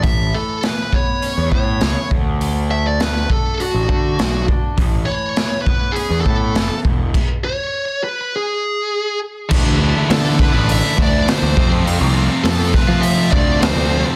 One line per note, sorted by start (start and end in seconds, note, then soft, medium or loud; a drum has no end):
0.00 0.93 A3 medium
0.00 0.34 E5 medium
0.00 kick loud
0.00 open hi-hat soft
0.04 0.32 A1 medium
0.04 1.53 A2 medium
0.34 0.63 E3 medium
0.34 0.64 A4 medium
0.63 1.81 E3 medium
0.63 0.95 B4 medium
0.63 snare medium
0.63 open hi-hat soft
0.93 1.50 B3 medium
0.93 1.49 C#5 medium
0.93 kick medium
1.22 2.11 C#4 medium
1.22 open hi-hat soft
1.37 1.51 E2 medium
1.51 1.79 A2 medium
1.51 2.11 B3 medium
1.51 2.07 C#5 medium
1.51 kick medium
1.81 1.96 C#2 medium
1.81 2.11 E3 medium
1.81 snare loud
1.81 open hi-hat soft
2.11 3.25 D2 medium
2.11 2.41 D3 medium
2.11 kick loud
2.41 3.00 D3 medium
2.41 open hi-hat soft
2.71 3.30 A3 medium
2.71 2.84 E5 medium
2.87 3.01 D5 medium
3.00 4.17 D3 medium
3.00 3.28 B4 medium
3.00 snare loud
3.00 open hi-hat soft
3.30 3.87 A3 medium
3.30 3.61 A4 medium
3.30 kick medium
3.60 4.46 D4 medium
3.60 4.44 F#4 medium
3.60 open hi-hat soft
3.74 3.88 A1 medium
3.88 4.16 D3 medium
3.88 4.77 A3 medium
3.88 kick medium
4.18 4.47 B1 medium
4.18 4.78 D3 medium
4.18 snare loud
4.18 open hi-hat soft
4.47 4.77 D4 medium
4.47 kick medium
4.77 5.05 A1 medium
4.77 6.25 A2 medium
4.77 kick loud
4.77 open hi-hat soft
5.06 5.35 E3 medium
5.06 5.61 C#5 medium
5.36 6.55 E3 medium
5.36 snare loud
5.36 open hi-hat soft
5.62 5.95 B4 medium
5.66 6.26 B3 medium
5.66 kick medium
5.92 6.20 G#4 medium
5.96 6.85 C#4 medium
5.96 open hi-hat soft
6.10 6.24 E2 medium
6.21 6.78 A4 medium
6.26 6.53 A2 medium
6.26 6.85 B3 medium
6.26 kick medium
6.55 6.69 F1 medium
6.55 6.85 E3 medium
6.55 snare loud
6.55 open hi-hat soft
6.85 7.12 E1 medium
6.85 7.14 E2 medium
6.85 kick medium
7.14 kick medium
7.14 crash medium
7.44 8.03 C#5 medium
8.04 8.34 B4 medium
8.36 9.18 G#4 medium
9.49 9.65 D2 loud
9.49 9.78 D3 medium
9.49 9.79 D3 loud
9.49 9.81 E3 loud
9.49 9.68 A3 medium
9.49 9.82 A3 loud
9.49 9.66 D4 loud
9.49 9.81 D4 loud
9.49 9.63 E4 loud
9.49 kick loud
9.49 crash loud
9.65 9.92 D2 medium
9.65 9.80 A3 medium
9.65 9.80 D4 medium
9.65 9.81 E4 medium
9.79 10.08 D3 medium
9.79 10.10 D3 medium
9.79 9.97 E3 medium
9.79 10.09 A3 medium
9.79 9.97 A3 medium
9.79 10.10 D4 medium
9.79 9.95 D4 medium
9.79 10.11 E4 medium
9.96 10.11 E3 medium
9.96 10.12 A3 medium
9.96 10.12 D4 medium
10.09 10.38 D3 loud
10.09 10.51 D3 loud
10.09 10.38 D3 medium
10.09 10.39 E3 loud
10.09 10.26 A3 loud
10.09 10.41 A3 loud
10.09 10.24 D4 loud
10.09 10.22 E4 loud
10.09 10.40 A4 medium
10.09 snare loud
10.09 open hi-hat medium
10.13 10.40 D4 loud
10.23 10.38 A3 medium
10.23 10.38 D4 medium
10.23 10.38 E4 medium
10.39 10.96 D3 medium
10.39 10.83 E3 medium
10.39 10.82 A3 medium
10.39 10.81 D4 medium
10.39 10.70 B4 loud
10.39 muted distorted electric guitar stroke soft
10.39 kick loud
10.52 10.81 A1 medium
10.52 10.96 A3 medium
10.52 10.97 D4 medium
10.52 10.98 E4 medium
10.69 10.97 E5 loud
10.69 open hi-hat medium
10.82 10.97 E3 medium
10.82 10.98 A3 medium
10.82 10.98 D4 medium
10.96 11.25 D2 medium
10.96 11.25 D3 medium
10.96 11.24 D3 medium
10.96 11.12 E3 medium
10.96 11.26 A3 medium
10.96 11.11 A3 medium
10.96 11.27 D4 medium
10.96 11.10 D4 medium
10.96 11.28 E4 medium
10.96 kick medium
11.03 11.30 D5 loud
11.11 11.26 E3 medium
11.11 11.26 A3 medium
11.11 11.27 D4 medium
11.25 11.54 D3 loud
11.25 11.54 D3 medium
11.25 11.54 E3 loud
11.25 11.54 A3 loud
11.25 11.42 A3 loud
11.25 11.55 D4 loud
11.25 11.40 D4 loud
11.25 snare loud
11.25 open hi-hat medium
11.30 11.38 E4 loud
11.30 11.70 C5 medium
11.40 11.55 D2 medium
11.40 11.55 A3 medium
11.40 11.54 D4 medium
11.40 11.53 E4 medium
11.55 11.85 F2 medium
11.55 11.98 F2 loud
11.55 11.85 C3 medium
11.55 11.83 F3 medium
11.55 11.71 F3 loud
11.55 11.71 A3 loud
11.55 11.70 A3 loud
11.55 11.69 C4 loud
11.55 11.71 C4 loud
11.55 11.68 F4 loud
11.55 kick loud
11.69 11.86 F3 medium
11.69 11.86 A3 medium
11.69 11.84 A3 medium
11.69 11.88 C4 medium
11.69 11.86 C4 medium
11.69 11.86 F4 medium
11.84 12.42 F2 loud
11.84 12.13 C3 loud
11.84 12.11 F3 medium
11.84 12.14 F3 medium
11.84 12.01 A3 loud
11.84 12.15 A3 loud
11.84 12.01 C4 loud
11.84 12.16 C4 loud
11.84 11.98 F4 loud
11.84 open hi-hat medium
11.99 12.28 C2 medium
11.99 12.12 A3 medium
11.99 12.15 C4 medium
11.99 12.15 F4 medium
12.13 12.42 C3 medium
12.13 12.42 F3 medium
12.13 12.31 F3 medium
12.13 12.43 A3 medium
12.13 12.30 A3 medium
12.13 12.46 C4 medium
12.13 12.45 F4 medium
12.17 12.29 C4 medium
12.30 12.43 F3 medium
12.30 12.43 A3 medium
12.30 12.45 C4 medium
12.43 13.02 F2 medium
12.43 12.71 F2 medium
12.43 12.72 C3 loud
12.43 12.71 F3 loud
12.43 12.73 F3 medium
12.43 12.60 A3 loud
12.43 12.73 A3 loud
12.43 12.74 C4 loud
12.43 12.58 C4 medium
12.43 12.56 F4 loud
12.43 12.71 A4 loud
12.43 snare loud
12.43 open hi-hat medium
12.58 12.72 A3 medium
12.58 12.72 C4 medium
12.58 12.72 F4 medium
12.72 13.30 C3 medium
12.72 13.16 F3 medium
12.72 13.15 A3 medium
12.72 13.14 C4 medium
12.72 13.04 B4 medium
12.72 muted distorted electric guitar stroke soft
12.72 kick medium
12.72 snare soft
12.87 13.29 F3 medium
12.87 13.31 A3 medium
12.87 13.32 C4 medium
12.87 13.33 F4 medium
13.01 13.29 E5 loud
13.01 open hi-hat medium
13.16 13.30 F3 medium
13.16 13.31 A3 medium
13.16 13.32 C4 medium
13.31 13.73 D2 loud
13.31 13.60 C3 medium
13.31 13.60 F3 medium
13.31 13.48 F3 medium
13.31 13.47 A3 medium
13.31 13.61 A3 medium
13.31 13.46 C4 medium
13.31 13.62 C4 medium
13.31 13.63 F4 medium
13.31 13.59 D5 medium
13.31 kick medium
13.47 13.61 F3 medium
13.47 13.62 A3 medium
13.47 13.62 C4 medium
13.61 14.16 F2 loud
13.61 13.88 C3 medium
13.61 13.88 F3 loud
13.61 13.89 F3 loud
13.61 13.77 A3 loud
13.61 13.90 A3 loud
13.61 13.75 C4 loud
13.61 13.90 C4 loud
13.61 13.74 F4 loud
13.61 14.02 C5 medium
13.61 snare loud
13.61 open hi-hat medium
13.75 14.03 D2 medium
13.75 13.90 A3 medium
13.75 13.91 C4 medium
13.75 13.92 F4 medium
13.89 14.16 C3 medium
13.89 14.16 F3 medium
13.89 14.05 F3 medium
13.89 14.07 A3 medium
13.89 14.04 A3 medium
13.89 14.03 C4 medium
13.89 14.05 C4 medium
13.89 14.03 F4 medium
14.04 14.16 F3 medium
14.04 14.16 A3 medium
14.04 14.16 C4 medium
14.04 14.16 F4 medium